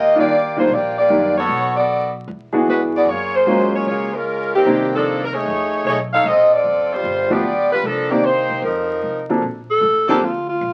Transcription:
Already playing: upright bass D#2, saxophone section A#3 F4 G4 D#5
0.15 upright piano D#3 G3 A#3 D4 F4
0.19 saxophone section A#3 F4 G4 D5
0.56 upright piano D#3 G3 A#3 D4 F4, saxophone section A3 D4 F4 C5
0.69 upright bass A#1
0.73 saxophone section A#3 F4 G4 D5
0.99 saxophone section A#3 F4 G4 D5
1.09 upright bass F#2, upright piano D#3 G3 A#3 D4 G4
1.38 saxophone section B3 F#4 A4 C#5
1.48 upright bass B1
1.77 saxophone section B3 F#4 A4 D5
2.28 upright bass E2
2.53 upright piano E3 B3 D4 F#4 G#4
2.67 upright bass G2, saxophone section G#3 D4 F#4 B4
2.95 saxophone section B3 F#4 G#4 D5
3.06 upright bass F#2, saxophone section A#3 F4 G#4 C#5
3.35 saxophone section A#3 F4 G#4 C5
3.46 upright piano F#3 G#3 A#3 C#4 F4
3.75 saxophone section A#3 F4 G#4 C#5
3.86 upright bass C#2, saxophone section A#3 F4 G#4 C#5
4.14 saxophone section G#3 C#4 F4 A#4
4.55 saxophone section D#3 A#3 C4 G4
4.65 upright bass C2, upright piano D#3 A#3 C4 D4 G4
4.94 saxophone section F3 A#3 D4 A4
5.24 saxophone section A#4
5.34 saxophone section A3 D#4 G#4 C#5
5.45 upright bass F2
5.85 upright bass B1, saxophone section A3 D#4 G#4 C#5
6.13 saxophone section D#4 A4 C#5 F5
6.24 upright bass A#1, saxophone section C4 F4 A4 D#5
6.53 saxophone section C4 F4 A4 D5
6.64 upright bass F#1
6.93 saxophone section G3 D4 F4 C5
7.04 upright bass G1
7.30 upright piano F3 A3 B3 D4 G4, saxophone section B3 F4 G4 D5
7.43 upright bass C#2
7.72 saxophone section G3 D4 F4 B4
7.83 upright bass C2, saxophone section F3 A#3 D4 A4
8.10 upright piano D#3 A#3 C4 D4 G4, saxophone section A#3 D#4 G4 D5
8.25 saxophone section A#3 D#4 G4 C5
8.50 upright bass C3
8.62 upright bass F2, saxophone section F3 C4 D#4 A#4
9.02 upright bass C2
9.29 upright piano F3 A#3 C4 D4 A4
9.42 upright bass A#1
9.70 alto saxophone A4
9.81 upright bass A1
10.08 saxophone section D3 A#3 C4 A4, upright piano F3 A#3 C4 D4 A4, alto saxophone G4
10.21 upright bass D2, alto saxophone F4
10.49 alto saxophone F4
10.61 upright bass A#1

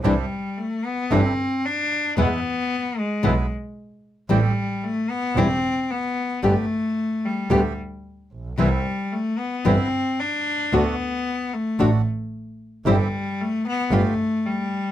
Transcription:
0.03 double bass C2, nylon-string guitar C3 E3 G3 D4 E4, cello G3, bandoneon C4 D4 E4
0.58 cello A3
0.85 cello B3
1.10 double bass G1, nylon-string guitar C3 E3 G3 D4 E4, bandoneon C4 D4 E4, cello C4
1.66 cello D4
2.17 double bass E2, nylon-string guitar B2 E3 G#3 B3 E4, bandoneon G#3 B3 E4, cello B3
2.98 cello G#3
3.23 double bass B1, nylon-string guitar B2 E3 G#3 B3 E4, bandoneon G#3 B3 E4
4.29 double bass A1, nylon-string guitar E3 G3 C4 E4, cello G3, bandoneon A3 C4 G4
4.83 cello A3
5.10 cello B3
5.35 double bass E1, nylon-string guitar E3 G3 C4 E4, bandoneon A3 C4 G4, cello C4
5.90 cello B3
6.42 double bass G1, nylon-string guitar D3 G3 B3 G4, bandoneon A3 B3 G4, cello A3
7.25 cello G3
7.50 double bass D2, nylon-string guitar D3 G3 B3 G4, bandoneon A3 B3 G4
8.32 double bass A#1
8.58 double bass C2, nylon-string guitar C3 E3 G3 B3 E4, cello G3, bandoneon B3 C4 E4
9.12 cello A3
9.38 cello B3
9.65 double bass G1, nylon-string guitar C3 E3 G3 B3 E4, bandoneon B3 C4 E4, cello C4
10.20 cello D4
10.72 double bass D2, nylon-string guitar D3 A3 D4 F#4, bandoneon A3 D4 F#4, cello B3
11.53 cello A3
11.79 double bass A1, nylon-string guitar D3 A3 D4 F#4, bandoneon A3 D4 F#4
12.86 double bass G1, nylon-string guitar G3 C4 E4, cello G3, bandoneon C4 E4 G4
13.41 cello A3
13.67 cello B3
13.91 double bass G1, nylon-string guitar G3 B3 F4, cello A3, bandoneon B3 F4 G4
14.46 cello G3

